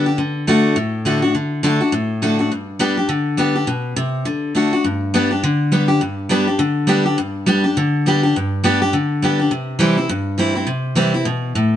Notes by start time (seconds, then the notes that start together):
Already playing: D3
0.06 D4 G4
0.18 D3
0.47 D3 A3 D4 F#4
0.76 A2
1.05 D3 A3 D4 F#4
1.22 D4 F#4
1.35 D3
1.63 D3 A3 D4 F#4
1.81 D4 F#4
1.92 A2
2.22 D3 A3 D4 F#4
2.39 D4 F#4
2.52 G2
2.79 G3 B3 D4 G4
2.97 D4 G4
3.09 D3
3.37 G3 B3 D4 G4
3.55 D4 G4
3.67 B2
3.96 C3
4.25 D3
4.55 D3 A3 D4 F#4
4.73 D4 F#4
4.84 G2
5.14 G3 B3 D4 G4
5.31 D4 G4
5.43 D3
5.72 G3 B3 D4 G4
5.88 D4 G4
6.01 G2
6.29 G3 B3 D4 G4
6.48 D4 G4
6.59 D3
6.87 G3 B3 D4 G4
7.05 D4 G4
7.18 G2
7.46 G3 B3 D4 G4
7.64 D4 G4
7.77 D3
8.06 G3 B3 D4 G4
8.23 D4 G4
8.36 G2
8.64 G3 B3 D4 G4
8.82 D4 G4
8.93 D3
9.22 G3 B3 D4 G4
9.39 D4 G4
9.51 C3
9.79 E3 G3 C4 E4
9.97 C4 E4
10.09 G2
10.38 E3 G3 C4 E4
10.55 C4 E4
10.67 C3
10.95 E3 G3 C4 E4
11.14 C4 E4
11.25 B2
11.55 A2